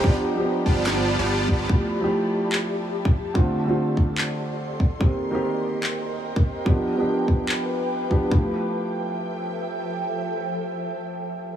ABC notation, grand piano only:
X:1
M:4/4
L:1/16
Q:"Swing 16ths" 1/4=145
K:Flyd
V:1 name="Grand piano"
[F,B,DG]3 [F,B,DG]12- [F,B,DG] | [F,A,EG]3 [F,A,EG]12- [F,A,EG] | [D,A,CF]3 [D,A,CF]8- [D,A,CF]3 z2 | [_E,_B,CG]3 [E,B,CG]12- [E,B,CG] |
[F,B,DG]3 [F,B,DG]8- [F,B,DG]3 [F,B,DG]2 | [F,A,EG]16- | [F,A,EG]16 |]